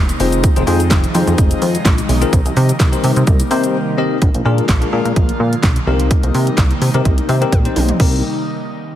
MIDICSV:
0, 0, Header, 1, 5, 480
1, 0, Start_track
1, 0, Key_signature, -3, "minor"
1, 0, Tempo, 472441
1, 445, Time_signature, 4, 2, 24, 8
1, 9097, End_track
2, 0, Start_track
2, 0, Title_t, "Tine electric piano"
2, 0, Program_c, 0, 4
2, 203, Note_on_c, 0, 60, 95
2, 205, Note_on_c, 0, 63, 88
2, 205, Note_on_c, 0, 65, 92
2, 207, Note_on_c, 0, 68, 89
2, 208, Note_on_c, 0, 72, 101
2, 495, Note_off_c, 0, 60, 0
2, 496, Note_off_c, 0, 63, 0
2, 496, Note_off_c, 0, 65, 0
2, 497, Note_off_c, 0, 68, 0
2, 497, Note_off_c, 0, 72, 0
2, 569, Note_on_c, 0, 60, 86
2, 570, Note_on_c, 0, 63, 80
2, 570, Note_on_c, 0, 65, 80
2, 572, Note_on_c, 0, 68, 81
2, 573, Note_on_c, 0, 72, 97
2, 630, Note_off_c, 0, 60, 0
2, 631, Note_off_c, 0, 63, 0
2, 631, Note_off_c, 0, 65, 0
2, 631, Note_off_c, 0, 68, 0
2, 632, Note_off_c, 0, 72, 0
2, 679, Note_on_c, 0, 60, 100
2, 681, Note_on_c, 0, 63, 94
2, 683, Note_on_c, 0, 65, 89
2, 683, Note_on_c, 0, 68, 94
2, 685, Note_on_c, 0, 72, 109
2, 815, Note_off_c, 0, 60, 0
2, 816, Note_off_c, 0, 63, 0
2, 817, Note_off_c, 0, 65, 0
2, 817, Note_off_c, 0, 68, 0
2, 818, Note_off_c, 0, 72, 0
2, 920, Note_on_c, 0, 60, 84
2, 921, Note_on_c, 0, 63, 78
2, 922, Note_on_c, 0, 65, 78
2, 923, Note_on_c, 0, 68, 78
2, 925, Note_on_c, 0, 72, 95
2, 1055, Note_off_c, 0, 60, 0
2, 1056, Note_off_c, 0, 63, 0
2, 1056, Note_off_c, 0, 65, 0
2, 1057, Note_off_c, 0, 68, 0
2, 1058, Note_off_c, 0, 72, 0
2, 1160, Note_on_c, 0, 60, 91
2, 1160, Note_on_c, 0, 63, 86
2, 1163, Note_on_c, 0, 65, 87
2, 1164, Note_on_c, 0, 68, 86
2, 1165, Note_on_c, 0, 72, 103
2, 1667, Note_off_c, 0, 60, 0
2, 1668, Note_off_c, 0, 63, 0
2, 1669, Note_off_c, 0, 65, 0
2, 1669, Note_off_c, 0, 68, 0
2, 1670, Note_off_c, 0, 72, 0
2, 2249, Note_on_c, 0, 60, 84
2, 2249, Note_on_c, 0, 63, 72
2, 2251, Note_on_c, 0, 65, 75
2, 2252, Note_on_c, 0, 68, 76
2, 2253, Note_on_c, 0, 70, 90
2, 2363, Note_off_c, 0, 60, 0
2, 2364, Note_off_c, 0, 63, 0
2, 2365, Note_off_c, 0, 65, 0
2, 2365, Note_off_c, 0, 68, 0
2, 2365, Note_off_c, 0, 70, 0
2, 2967, Note_on_c, 0, 60, 93
2, 2969, Note_on_c, 0, 63, 83
2, 2971, Note_on_c, 0, 67, 79
2, 2972, Note_on_c, 0, 70, 77
2, 2973, Note_on_c, 0, 72, 99
2, 3280, Note_off_c, 0, 60, 0
2, 3281, Note_off_c, 0, 63, 0
2, 3282, Note_off_c, 0, 67, 0
2, 3282, Note_off_c, 0, 70, 0
2, 3283, Note_off_c, 0, 72, 0
2, 3562, Note_on_c, 0, 60, 107
2, 3562, Note_on_c, 0, 63, 96
2, 3565, Note_on_c, 0, 67, 98
2, 3566, Note_on_c, 0, 70, 95
2, 3566, Note_on_c, 0, 72, 116
2, 3816, Note_off_c, 0, 60, 0
2, 3816, Note_off_c, 0, 63, 0
2, 3818, Note_off_c, 0, 67, 0
2, 3818, Note_off_c, 0, 70, 0
2, 3818, Note_off_c, 0, 72, 0
2, 4042, Note_on_c, 0, 60, 86
2, 4045, Note_on_c, 0, 63, 76
2, 4045, Note_on_c, 0, 67, 76
2, 4047, Note_on_c, 0, 70, 78
2, 4047, Note_on_c, 0, 75, 93
2, 4236, Note_off_c, 0, 60, 0
2, 4237, Note_off_c, 0, 63, 0
2, 4237, Note_off_c, 0, 67, 0
2, 4238, Note_off_c, 0, 70, 0
2, 4238, Note_off_c, 0, 75, 0
2, 4521, Note_on_c, 0, 62, 91
2, 4524, Note_on_c, 0, 65, 86
2, 4527, Note_on_c, 0, 68, 87
2, 4527, Note_on_c, 0, 70, 109
2, 4715, Note_off_c, 0, 62, 0
2, 4716, Note_off_c, 0, 65, 0
2, 4718, Note_off_c, 0, 68, 0
2, 4718, Note_off_c, 0, 70, 0
2, 4888, Note_on_c, 0, 62, 89
2, 4890, Note_on_c, 0, 65, 83
2, 4892, Note_on_c, 0, 68, 81
2, 4894, Note_on_c, 0, 70, 97
2, 4950, Note_off_c, 0, 62, 0
2, 4950, Note_off_c, 0, 65, 0
2, 4952, Note_off_c, 0, 68, 0
2, 4952, Note_off_c, 0, 70, 0
2, 5002, Note_on_c, 0, 62, 88
2, 5005, Note_on_c, 0, 65, 79
2, 5005, Note_on_c, 0, 68, 80
2, 5008, Note_on_c, 0, 70, 98
2, 5508, Note_off_c, 0, 62, 0
2, 5510, Note_off_c, 0, 65, 0
2, 5510, Note_off_c, 0, 68, 0
2, 5511, Note_off_c, 0, 70, 0
2, 5964, Note_on_c, 0, 60, 95
2, 5966, Note_on_c, 0, 63, 85
2, 5967, Note_on_c, 0, 67, 82
2, 5969, Note_on_c, 0, 70, 99
2, 6736, Note_off_c, 0, 60, 0
2, 6736, Note_off_c, 0, 63, 0
2, 6737, Note_off_c, 0, 67, 0
2, 6738, Note_off_c, 0, 70, 0
2, 7053, Note_on_c, 0, 60, 92
2, 7055, Note_on_c, 0, 63, 81
2, 7056, Note_on_c, 0, 67, 82
2, 7058, Note_on_c, 0, 70, 101
2, 7238, Note_off_c, 0, 60, 0
2, 7240, Note_off_c, 0, 63, 0
2, 7240, Note_off_c, 0, 67, 0
2, 7241, Note_off_c, 0, 70, 0
2, 7404, Note_on_c, 0, 60, 92
2, 7406, Note_on_c, 0, 63, 83
2, 7407, Note_on_c, 0, 67, 85
2, 7410, Note_on_c, 0, 72, 96
2, 7471, Note_off_c, 0, 60, 0
2, 7472, Note_off_c, 0, 63, 0
2, 7473, Note_off_c, 0, 67, 0
2, 7474, Note_off_c, 0, 72, 0
2, 7533, Note_on_c, 0, 60, 96
2, 7534, Note_on_c, 0, 63, 85
2, 7536, Note_on_c, 0, 67, 84
2, 7538, Note_on_c, 0, 70, 107
2, 7652, Note_off_c, 0, 60, 0
2, 7652, Note_off_c, 0, 63, 0
2, 7653, Note_off_c, 0, 67, 0
2, 7654, Note_off_c, 0, 70, 0
2, 7772, Note_on_c, 0, 60, 79
2, 7774, Note_on_c, 0, 63, 74
2, 7775, Note_on_c, 0, 67, 72
2, 7777, Note_on_c, 0, 72, 89
2, 8082, Note_off_c, 0, 60, 0
2, 8083, Note_off_c, 0, 63, 0
2, 8084, Note_off_c, 0, 67, 0
2, 8085, Note_off_c, 0, 72, 0
2, 8126, Note_on_c, 0, 63, 79
2, 8126, Note_on_c, 0, 67, 77
2, 8127, Note_on_c, 0, 60, 88
2, 8127, Note_on_c, 0, 70, 91
2, 8349, Note_off_c, 0, 60, 0
2, 8349, Note_off_c, 0, 63, 0
2, 8349, Note_off_c, 0, 67, 0
2, 8350, Note_off_c, 0, 70, 0
2, 9097, End_track
3, 0, Start_track
3, 0, Title_t, "Analog synth pad"
3, 0, Program_c, 1, 89
3, 0, Note_on_c, 1, 48, 80
3, 0, Note_on_c, 1, 51, 70
3, 0, Note_on_c, 1, 55, 70
3, 0, Note_on_c, 1, 58, 77
3, 0, Note_on_c, 1, 63, 88
3, 171, Note_off_c, 1, 58, 0
3, 188, Note_off_c, 1, 55, 0
3, 204, Note_on_c, 1, 56, 71
3, 207, Note_on_c, 1, 53, 70
3, 2343, Note_off_c, 1, 56, 0
3, 2345, Note_off_c, 1, 53, 0
3, 2370, Note_on_c, 1, 58, 75
3, 2371, Note_on_c, 1, 55, 74
3, 4247, Note_off_c, 1, 48, 0
3, 4247, Note_off_c, 1, 63, 0
3, 4248, Note_off_c, 1, 51, 0
3, 4268, Note_off_c, 1, 58, 0
3, 4269, Note_off_c, 1, 55, 0
3, 4286, Note_on_c, 1, 56, 73
3, 4287, Note_on_c, 1, 65, 87
3, 4288, Note_on_c, 1, 58, 74
3, 4289, Note_on_c, 1, 50, 80
3, 4289, Note_on_c, 1, 53, 71
3, 5949, Note_off_c, 1, 56, 0
3, 5949, Note_off_c, 1, 65, 0
3, 5950, Note_off_c, 1, 50, 0
3, 5950, Note_off_c, 1, 53, 0
3, 5967, Note_on_c, 1, 63, 87
3, 5968, Note_on_c, 1, 55, 70
3, 5969, Note_on_c, 1, 51, 71
3, 5970, Note_on_c, 1, 48, 75
3, 8088, Note_off_c, 1, 58, 0
3, 8105, Note_off_c, 1, 51, 0
3, 8105, Note_off_c, 1, 55, 0
3, 8105, Note_off_c, 1, 63, 0
3, 8106, Note_off_c, 1, 48, 0
3, 8123, Note_on_c, 1, 63, 79
3, 8124, Note_on_c, 1, 48, 72
3, 8124, Note_on_c, 1, 51, 63
3, 8124, Note_on_c, 1, 55, 64
3, 8124, Note_on_c, 1, 58, 67
3, 8348, Note_off_c, 1, 48, 0
3, 8348, Note_off_c, 1, 51, 0
3, 8348, Note_off_c, 1, 55, 0
3, 8348, Note_off_c, 1, 58, 0
3, 8348, Note_off_c, 1, 63, 0
3, 9097, End_track
4, 0, Start_track
4, 0, Title_t, "Analog synth bass"
4, 0, Program_c, 2, 38
4, 0, Note_on_c, 2, 28, 99
4, 120, Note_off_c, 2, 28, 0
4, 204, Note_on_c, 2, 29, 103
4, 443, Note_off_c, 2, 29, 0
4, 572, Note_on_c, 2, 29, 104
4, 646, Note_off_c, 2, 29, 0
4, 686, Note_on_c, 2, 41, 98
4, 922, Note_on_c, 2, 29, 100
4, 937, Note_off_c, 2, 41, 0
4, 1079, Note_off_c, 2, 29, 0
4, 1165, Note_on_c, 2, 41, 107
4, 1248, Note_off_c, 2, 41, 0
4, 1294, Note_on_c, 2, 41, 107
4, 1367, Note_off_c, 2, 41, 0
4, 1405, Note_on_c, 2, 29, 113
4, 1561, Note_off_c, 2, 29, 0
4, 1645, Note_on_c, 2, 41, 103
4, 1801, Note_off_c, 2, 41, 0
4, 1884, Note_on_c, 2, 34, 103
4, 2040, Note_off_c, 2, 34, 0
4, 2125, Note_on_c, 2, 35, 100
4, 2281, Note_off_c, 2, 35, 0
4, 2366, Note_on_c, 2, 36, 125
4, 2448, Note_off_c, 2, 36, 0
4, 2493, Note_on_c, 2, 36, 106
4, 2566, Note_off_c, 2, 36, 0
4, 2608, Note_on_c, 2, 48, 120
4, 2763, Note_off_c, 2, 48, 0
4, 2843, Note_on_c, 2, 36, 108
4, 3000, Note_off_c, 2, 36, 0
4, 3087, Note_on_c, 2, 48, 109
4, 3169, Note_off_c, 2, 48, 0
4, 3216, Note_on_c, 2, 48, 104
4, 3288, Note_off_c, 2, 48, 0
4, 3325, Note_on_c, 2, 36, 117
4, 3481, Note_off_c, 2, 36, 0
4, 3569, Note_on_c, 2, 48, 106
4, 3724, Note_off_c, 2, 48, 0
4, 4285, Note_on_c, 2, 34, 114
4, 4368, Note_off_c, 2, 34, 0
4, 4414, Note_on_c, 2, 34, 98
4, 4487, Note_off_c, 2, 34, 0
4, 4526, Note_on_c, 2, 46, 104
4, 4682, Note_off_c, 2, 46, 0
4, 4763, Note_on_c, 2, 34, 105
4, 4919, Note_off_c, 2, 34, 0
4, 5006, Note_on_c, 2, 46, 98
4, 5089, Note_off_c, 2, 46, 0
4, 5133, Note_on_c, 2, 46, 95
4, 5206, Note_off_c, 2, 46, 0
4, 5246, Note_on_c, 2, 34, 101
4, 5402, Note_off_c, 2, 34, 0
4, 5485, Note_on_c, 2, 46, 107
4, 5641, Note_off_c, 2, 46, 0
4, 5724, Note_on_c, 2, 35, 97
4, 5881, Note_off_c, 2, 35, 0
4, 5965, Note_on_c, 2, 36, 102
4, 6204, Note_off_c, 2, 36, 0
4, 6333, Note_on_c, 2, 36, 102
4, 6406, Note_off_c, 2, 36, 0
4, 6447, Note_on_c, 2, 48, 107
4, 6603, Note_off_c, 2, 48, 0
4, 6683, Note_on_c, 2, 36, 107
4, 6840, Note_off_c, 2, 36, 0
4, 6925, Note_on_c, 2, 48, 97
4, 7008, Note_off_c, 2, 48, 0
4, 7054, Note_on_c, 2, 48, 98
4, 7127, Note_off_c, 2, 48, 0
4, 7166, Note_on_c, 2, 36, 104
4, 7322, Note_off_c, 2, 36, 0
4, 7406, Note_on_c, 2, 48, 107
4, 7562, Note_off_c, 2, 48, 0
4, 7645, Note_on_c, 2, 34, 102
4, 7801, Note_off_c, 2, 34, 0
4, 7889, Note_on_c, 2, 35, 90
4, 8044, Note_off_c, 2, 35, 0
4, 8127, Note_on_c, 2, 36, 100
4, 8349, Note_off_c, 2, 36, 0
4, 9097, End_track
5, 0, Start_track
5, 0, Title_t, "Drums"
5, 93, Note_on_c, 9, 42, 57
5, 93, Note_on_c, 9, 82, 57
5, 194, Note_off_c, 9, 42, 0
5, 194, Note_off_c, 9, 82, 0
5, 202, Note_on_c, 9, 46, 85
5, 202, Note_on_c, 9, 82, 59
5, 304, Note_off_c, 9, 46, 0
5, 304, Note_off_c, 9, 82, 0
5, 330, Note_on_c, 9, 42, 68
5, 330, Note_on_c, 9, 82, 90
5, 431, Note_off_c, 9, 42, 0
5, 431, Note_off_c, 9, 82, 0
5, 443, Note_on_c, 9, 42, 83
5, 443, Note_on_c, 9, 82, 83
5, 444, Note_on_c, 9, 36, 117
5, 545, Note_off_c, 9, 42, 0
5, 545, Note_off_c, 9, 82, 0
5, 546, Note_off_c, 9, 36, 0
5, 573, Note_on_c, 9, 42, 54
5, 573, Note_on_c, 9, 82, 51
5, 674, Note_off_c, 9, 42, 0
5, 674, Note_off_c, 9, 82, 0
5, 683, Note_on_c, 9, 46, 71
5, 683, Note_on_c, 9, 82, 52
5, 784, Note_off_c, 9, 46, 0
5, 784, Note_off_c, 9, 82, 0
5, 813, Note_on_c, 9, 42, 61
5, 813, Note_on_c, 9, 82, 83
5, 914, Note_off_c, 9, 42, 0
5, 914, Note_off_c, 9, 82, 0
5, 917, Note_on_c, 9, 38, 103
5, 922, Note_on_c, 9, 36, 114
5, 924, Note_on_c, 9, 42, 75
5, 924, Note_on_c, 9, 82, 77
5, 925, Note_on_c, 9, 39, 120
5, 1019, Note_off_c, 9, 38, 0
5, 1024, Note_off_c, 9, 36, 0
5, 1026, Note_off_c, 9, 42, 0
5, 1026, Note_off_c, 9, 82, 0
5, 1027, Note_off_c, 9, 39, 0
5, 1054, Note_on_c, 9, 42, 51
5, 1054, Note_on_c, 9, 82, 52
5, 1155, Note_off_c, 9, 42, 0
5, 1155, Note_off_c, 9, 82, 0
5, 1165, Note_on_c, 9, 46, 92
5, 1165, Note_on_c, 9, 82, 66
5, 1266, Note_off_c, 9, 46, 0
5, 1266, Note_off_c, 9, 82, 0
5, 1294, Note_on_c, 9, 42, 52
5, 1294, Note_on_c, 9, 82, 72
5, 1396, Note_off_c, 9, 42, 0
5, 1396, Note_off_c, 9, 82, 0
5, 1403, Note_on_c, 9, 42, 71
5, 1403, Note_on_c, 9, 82, 74
5, 1405, Note_on_c, 9, 36, 121
5, 1505, Note_off_c, 9, 42, 0
5, 1505, Note_off_c, 9, 82, 0
5, 1507, Note_off_c, 9, 36, 0
5, 1532, Note_on_c, 9, 42, 65
5, 1532, Note_on_c, 9, 82, 65
5, 1634, Note_off_c, 9, 42, 0
5, 1634, Note_off_c, 9, 82, 0
5, 1644, Note_on_c, 9, 46, 70
5, 1644, Note_on_c, 9, 82, 50
5, 1746, Note_off_c, 9, 46, 0
5, 1746, Note_off_c, 9, 82, 0
5, 1775, Note_on_c, 9, 42, 58
5, 1775, Note_on_c, 9, 82, 75
5, 1877, Note_off_c, 9, 42, 0
5, 1877, Note_off_c, 9, 82, 0
5, 1880, Note_on_c, 9, 38, 99
5, 1884, Note_on_c, 9, 36, 118
5, 1886, Note_on_c, 9, 42, 86
5, 1886, Note_on_c, 9, 82, 86
5, 1888, Note_on_c, 9, 39, 119
5, 1981, Note_off_c, 9, 38, 0
5, 1985, Note_off_c, 9, 36, 0
5, 1988, Note_off_c, 9, 42, 0
5, 1988, Note_off_c, 9, 82, 0
5, 1990, Note_off_c, 9, 39, 0
5, 2015, Note_on_c, 9, 42, 59
5, 2015, Note_on_c, 9, 82, 58
5, 2116, Note_off_c, 9, 42, 0
5, 2116, Note_off_c, 9, 82, 0
5, 2126, Note_on_c, 9, 46, 86
5, 2126, Note_on_c, 9, 82, 58
5, 2227, Note_off_c, 9, 46, 0
5, 2227, Note_off_c, 9, 82, 0
5, 2252, Note_on_c, 9, 42, 65
5, 2252, Note_on_c, 9, 82, 96
5, 2354, Note_off_c, 9, 42, 0
5, 2354, Note_off_c, 9, 82, 0
5, 2366, Note_on_c, 9, 36, 115
5, 2367, Note_on_c, 9, 42, 84
5, 2367, Note_on_c, 9, 82, 84
5, 2467, Note_off_c, 9, 36, 0
5, 2469, Note_off_c, 9, 42, 0
5, 2469, Note_off_c, 9, 82, 0
5, 2497, Note_on_c, 9, 42, 53
5, 2497, Note_on_c, 9, 82, 55
5, 2598, Note_off_c, 9, 42, 0
5, 2598, Note_off_c, 9, 82, 0
5, 2607, Note_on_c, 9, 46, 68
5, 2607, Note_on_c, 9, 82, 51
5, 2709, Note_off_c, 9, 46, 0
5, 2709, Note_off_c, 9, 82, 0
5, 2735, Note_on_c, 9, 42, 60
5, 2735, Note_on_c, 9, 82, 86
5, 2836, Note_off_c, 9, 42, 0
5, 2836, Note_off_c, 9, 82, 0
5, 2840, Note_on_c, 9, 38, 98
5, 2843, Note_on_c, 9, 36, 118
5, 2847, Note_on_c, 9, 42, 75
5, 2847, Note_on_c, 9, 82, 77
5, 2848, Note_on_c, 9, 39, 119
5, 2942, Note_off_c, 9, 38, 0
5, 2945, Note_off_c, 9, 36, 0
5, 2949, Note_off_c, 9, 42, 0
5, 2949, Note_off_c, 9, 82, 0
5, 2950, Note_off_c, 9, 39, 0
5, 2975, Note_on_c, 9, 42, 54
5, 2975, Note_on_c, 9, 82, 53
5, 3077, Note_off_c, 9, 42, 0
5, 3077, Note_off_c, 9, 82, 0
5, 3086, Note_on_c, 9, 46, 90
5, 3086, Note_on_c, 9, 82, 65
5, 3187, Note_off_c, 9, 46, 0
5, 3187, Note_off_c, 9, 82, 0
5, 3214, Note_on_c, 9, 42, 52
5, 3214, Note_on_c, 9, 82, 75
5, 3316, Note_off_c, 9, 42, 0
5, 3316, Note_off_c, 9, 82, 0
5, 3323, Note_on_c, 9, 42, 72
5, 3323, Note_on_c, 9, 82, 71
5, 3325, Note_on_c, 9, 36, 121
5, 3425, Note_off_c, 9, 42, 0
5, 3425, Note_off_c, 9, 82, 0
5, 3427, Note_off_c, 9, 36, 0
5, 3450, Note_on_c, 9, 42, 65
5, 3450, Note_on_c, 9, 82, 65
5, 3552, Note_off_c, 9, 42, 0
5, 3552, Note_off_c, 9, 82, 0
5, 3565, Note_on_c, 9, 46, 72
5, 3565, Note_on_c, 9, 82, 52
5, 3666, Note_off_c, 9, 46, 0
5, 3666, Note_off_c, 9, 82, 0
5, 3694, Note_on_c, 9, 42, 53
5, 3694, Note_on_c, 9, 82, 81
5, 3795, Note_off_c, 9, 42, 0
5, 3795, Note_off_c, 9, 82, 0
5, 4284, Note_on_c, 9, 42, 82
5, 4285, Note_on_c, 9, 36, 108
5, 4386, Note_off_c, 9, 42, 0
5, 4387, Note_off_c, 9, 36, 0
5, 4414, Note_on_c, 9, 42, 48
5, 4516, Note_off_c, 9, 42, 0
5, 4655, Note_on_c, 9, 42, 59
5, 4757, Note_off_c, 9, 42, 0
5, 4758, Note_on_c, 9, 38, 97
5, 4763, Note_on_c, 9, 36, 106
5, 4765, Note_on_c, 9, 42, 71
5, 4766, Note_on_c, 9, 39, 116
5, 4860, Note_off_c, 9, 38, 0
5, 4865, Note_off_c, 9, 36, 0
5, 4866, Note_off_c, 9, 42, 0
5, 4868, Note_off_c, 9, 39, 0
5, 4894, Note_on_c, 9, 42, 47
5, 4996, Note_off_c, 9, 42, 0
5, 5135, Note_on_c, 9, 42, 50
5, 5237, Note_off_c, 9, 42, 0
5, 5246, Note_on_c, 9, 36, 112
5, 5246, Note_on_c, 9, 42, 69
5, 5348, Note_off_c, 9, 36, 0
5, 5348, Note_off_c, 9, 42, 0
5, 5374, Note_on_c, 9, 42, 62
5, 5475, Note_off_c, 9, 42, 0
5, 5615, Note_on_c, 9, 42, 55
5, 5717, Note_off_c, 9, 42, 0
5, 5719, Note_on_c, 9, 38, 98
5, 5724, Note_on_c, 9, 36, 115
5, 5725, Note_on_c, 9, 42, 76
5, 5727, Note_on_c, 9, 39, 119
5, 5821, Note_off_c, 9, 38, 0
5, 5826, Note_off_c, 9, 36, 0
5, 5827, Note_off_c, 9, 42, 0
5, 5829, Note_off_c, 9, 39, 0
5, 5853, Note_on_c, 9, 42, 55
5, 5954, Note_off_c, 9, 42, 0
5, 6092, Note_on_c, 9, 42, 62
5, 6193, Note_off_c, 9, 42, 0
5, 6205, Note_on_c, 9, 42, 80
5, 6206, Note_on_c, 9, 36, 113
5, 6307, Note_off_c, 9, 36, 0
5, 6307, Note_off_c, 9, 42, 0
5, 6334, Note_on_c, 9, 42, 49
5, 6435, Note_off_c, 9, 42, 0
5, 6446, Note_on_c, 9, 46, 67
5, 6548, Note_off_c, 9, 46, 0
5, 6574, Note_on_c, 9, 42, 60
5, 6676, Note_off_c, 9, 42, 0
5, 6677, Note_on_c, 9, 38, 96
5, 6683, Note_on_c, 9, 36, 113
5, 6684, Note_on_c, 9, 42, 76
5, 6685, Note_on_c, 9, 39, 114
5, 6779, Note_off_c, 9, 38, 0
5, 6785, Note_off_c, 9, 36, 0
5, 6786, Note_off_c, 9, 42, 0
5, 6787, Note_off_c, 9, 39, 0
5, 6814, Note_on_c, 9, 42, 50
5, 6915, Note_off_c, 9, 42, 0
5, 6925, Note_on_c, 9, 46, 88
5, 7027, Note_off_c, 9, 46, 0
5, 7054, Note_on_c, 9, 42, 53
5, 7155, Note_off_c, 9, 42, 0
5, 7166, Note_on_c, 9, 36, 111
5, 7167, Note_on_c, 9, 42, 68
5, 7268, Note_off_c, 9, 36, 0
5, 7268, Note_off_c, 9, 42, 0
5, 7294, Note_on_c, 9, 42, 62
5, 7395, Note_off_c, 9, 42, 0
5, 7405, Note_on_c, 9, 46, 68
5, 7507, Note_off_c, 9, 46, 0
5, 7535, Note_on_c, 9, 42, 54
5, 7637, Note_off_c, 9, 42, 0
5, 7645, Note_on_c, 9, 36, 109
5, 7646, Note_on_c, 9, 42, 83
5, 7646, Note_on_c, 9, 48, 61
5, 7746, Note_off_c, 9, 36, 0
5, 7748, Note_off_c, 9, 42, 0
5, 7748, Note_off_c, 9, 48, 0
5, 7775, Note_on_c, 9, 42, 56
5, 7877, Note_off_c, 9, 42, 0
5, 7886, Note_on_c, 9, 46, 75
5, 7888, Note_on_c, 9, 45, 89
5, 7987, Note_off_c, 9, 46, 0
5, 7989, Note_off_c, 9, 45, 0
5, 8012, Note_on_c, 9, 42, 62
5, 8013, Note_on_c, 9, 43, 93
5, 8114, Note_off_c, 9, 42, 0
5, 8115, Note_off_c, 9, 43, 0
5, 8126, Note_on_c, 9, 36, 110
5, 8126, Note_on_c, 9, 49, 95
5, 8228, Note_off_c, 9, 36, 0
5, 8228, Note_off_c, 9, 49, 0
5, 9097, End_track
0, 0, End_of_file